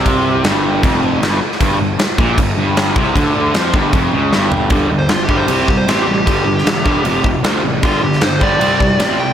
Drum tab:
CC |x---x---x---x---|x---x---x---x---|x---x---x-------|x---x---x---x---|
SD |----o-------o--o|----o-------o---|----o-------o---|----o-------o---|
FT |----------------|----------------|--------------o-|----------------|
BD |o-------o-------|o-----o-o-----o-|o-----o-o-------|o-----o---o-----|

CC |x---x---x---x---|x---x---x---x---|
SD |---oo-------o---|---oo-------o---|
FT |----------------|----------------|
BD |o-----o---o-----|o-----o---o-----|